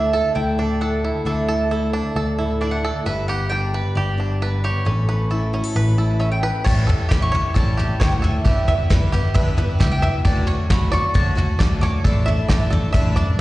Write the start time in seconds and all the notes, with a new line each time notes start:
Already playing: D2 D3 A3 D4 E4 A4 E5
0.13 A4
0.35 D2 E4 G5
0.58 A2 D4 A4
0.81 E4 A4 F#5
1.04 E4
1.25 D2 D3 D4 A4 E5
1.48 E4 A4
1.71 A3 E4 A4
1.93 D4 A4
2.16 D2 A4
2.38 A2 E4 A4
2.61 D4 E4 D5
2.71 F#5
2.85 A4
3.06 G1 G2 G4 B4 E5
3.28 B3 G4 F#5
3.50 G3 D4 G5
3.74 G4 B4
3.95 G1 G4 D5
4.18 D3 D4
4.42 B3 B4
4.64 G4 C#5
4.85 A1 A2 C#4 A4
5.09 C#4 B4
5.30 E3 E4 A4
5.53 C#4 F#4
5.64 A4
5.75 A1 B4
5.98 A2 E4 A4
6.20 C#4 E5
6.32 G5
6.43 B4
6.64 A1 A2 E3 G3 C#4 E4 C#5 A5, kick, floor tom, crash
6.87 G3 C#4 E4 A4, floor tom
7.09 A1 E3 G3 C#4 E4 G4 B5, kick, snare, floor tom
7.22 C#6
7.32 C#4 E4 C#5, floor tom
7.36 G3
7.54 A1 A2 E3 G3 C#4 E4 A4 A5, kick, floor tom
7.77 G3 C#4 E4 G4, floor tom
8.00 D2 E3 G3 C#4 E4 C#5 G5, kick, snare, floor tom
8.12 F#5
8.22 G3 C#4 E4 A4 E5, floor tom
8.45 G1 G2 D3 E3 G3 B3 E4 G4, kick, floor tom
8.68 E3 G3 B3 E4 E5, floor tom
8.90 G1 E3 G3 B3 E4 B4, kick, snare, floor tom
9.12 E3 G3 B3 E4 G4, floor tom
9.34 G1 G2 D3 E3 G3 B3 E4 E5, kick, floor tom
9.57 E3 G3 B3 E4 B4, floor tom
9.79 C#2 E3 G3 B3 E4 G4 E5, kick, snare, floor tom
9.92 G5
10.02 E3 G3 B3 E4 E5, floor tom
10.24 D2 D3 F#3 A3 C#4 F#4 D5 A5, kick, floor tom
10.47 A3 C#4 F#4 C#5, floor tom
10.70 D2 F#3 A3 C#4 F#4 B5, kick, snare, floor tom
10.92 A3 C#4 F#4 D5 C#6, floor tom
11.14 D2 D3 F#3 A3 C#4 F#4 C#5 A5, kick, floor tom
11.35 A3 C#4 F#4, floor tom
11.59 D2 F#3 A3 C#4 F#4 D5, kick, snare, floor tom
11.81 C#4 F#4 C#5 D6, floor tom
11.86 A3
12.04 A1 A2 D3 A3 D4 E4 A4, kick, floor tom
12.26 A3 D4 E4 E5, floor tom
12.48 A1 D3 A3 D4 E4 D5, kick, snare, floor tom
12.70 A3 D4 E4 A4, floor tom
12.93 A1 A2 D3 A3 D4 E4 E5, kick, floor tom
13.15 F#2 A3 D4 E4 D5, floor tom